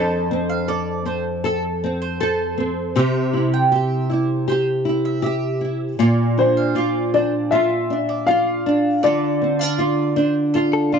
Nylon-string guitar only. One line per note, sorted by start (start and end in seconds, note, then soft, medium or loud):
0.00 2.96 F2 medium
0.00 0.67 A4 medium
0.31 1.05 C4 medium
0.68 1.43 A4 medium
1.05 1.83 C4 medium
1.44 2.19 A4 medium
1.84 2.57 C4 medium
2.21 2.96 A4 medium
2.58 3.33 C4 medium
2.96 5.98 C3 medium
2.96 3.70 G4 medium
3.33 4.08 E4 medium
3.72 4.46 G4 medium
4.10 4.84 E4 medium
4.48 5.21 G4 medium
4.85 5.60 E4 medium
5.22 5.99 G4 medium
5.61 6.07 E4 soft
5.99 9.02 A#2 medium
5.99 6.75 F4 medium
6.37 7.14 D4 medium
6.75 7.52 F4 medium
7.14 7.90 D4 medium
7.52 8.28 F4 medium
7.90 8.66 D4 medium
8.28 9.04 F4 medium
8.66 9.41 D4 medium
9.04 10.99 D3 medium
9.04 9.78 F4 medium
9.42 9.61 C4 medium
9.61 10.15 D4 soft
9.78 10.55 F4 medium
10.16 10.91 D4 medium
10.55 10.99 F4 medium
10.92 10.99 D4 medium